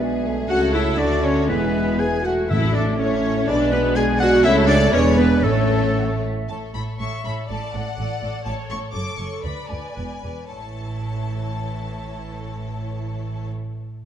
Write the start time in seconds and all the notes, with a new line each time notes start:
Already playing: B1 B2 G#3 D4 E5
0.02 B3 G#4
0.26 A3
0.48 C#2 C#3 A3 C#4 F#4 A4 C#5 F#5
0.73 E4 E5
0.97 D2 D3 A3 D4 F#4 D5
1.23 C#4 C#5
1.48 E1 E2 G#3 B3 E4 G#4 B4 E5
1.99 G#3 B3 E4 G#4 G#5
2.24 A3 F#4 F#5
2.49 A1 A2 A3 E4 A4 E5
2.74 D4 D5
2.98 A3 C#4 C#5 E5
3.47 B1 B2 G#3 D4 B4 D5
3.71 B3 B4
3.95 G#3 G#4 D5 G#5
4.20 F#4 F#5
4.43 C#2 C#3 A3 C#4 E4 A4 C#5 E5
4.67 D4 D5
4.92 E1 E2 G#3 C#4 D4 B4 C#5 D5
5.17 B3 B4
5.43 A1 A2 A3 C#4 A4 C#5
5.96 F#5
6.23 E5
6.49 A1 A2 A4 C#5 A5
6.74 A1 A2 A4 C#5 B5
6.99 A1 A2 A4 C#5 E5 C#6
7.25 A1 A2 A4 C#5 B5
7.49 A1 A2 A4 D5 A5
7.73 A1 A2 A4 D5 F#5
7.97 A1 A2 A4 D5
8.21 A1 A2 A4 D5
8.44 A1 A2 A4 C#5 A5
8.69 A1 A2 A4 C#5 C#6
8.93 F#1 F#2 A4 C#5 D6
9.18 F#1 F#2 A4 C#5 C#6
9.43 D2 B4 D5 B5
9.69 D2 B4 D5 G#5
9.96 E1 E2 B4 D5
10.23 E1 E2 B4 D5
10.50 A1 A2 E3 E4 A4 C#5 A5